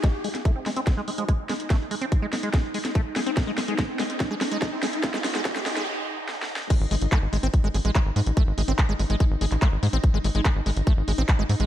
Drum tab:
CC |------------------------------------------------|------------------------------------------------|------------------------------------------------|------------------------------------------------|
HH |x-----o--x--x-----o--x--x-----o--x--x-----o--x--|x-----o--x--x-----o--x--x-----o--x--x-----o--x--|x-----o--x--x-----o--x--x-----o--x--x-----o--x--|x-----o--x--x-----o--x--------------------------|
CP |------------------------------------------------|------------------------------------------------|------------------------------------------------|------------------------------------------------|
SD |o--------o--------o-----o-----------------o-----|o-----------------o-----o--------o--------o-----|o-----o-----o-----o-----o-----o-----o-----o-----|o--o--o--o--o--o--o--o--------------o---o---o---|
BD |o-----------o-----------o-----------o-----------|o-----------o-----------o-----------o-----------|o-----------o-----------o-----------o-----------|o-----------o-----------------------------------|

CC |x-----------------------------------------------|------------------------------------------------|------------------------------------------------|
HH |x-----o--x--x-----o--x--x-----o--x--x-----o--x--|x-----o--x--x-----o--x--x-----o--x--x-----o--x--|x-----o--x--x-----o--x--x-----o--x--x-----o--x--|
CP |------------x-----------------------x-----------|------------x--------------------x--x-----------|------------x-----------------------x-----------|
SD |------------------------------------------------|------------------------------------------------|------------------------------------------------|
BD |o-----------o-----------o-----------o-----------|o-----------o-----------o-----------o-----------|o-----------o-----------o-----------o-----------|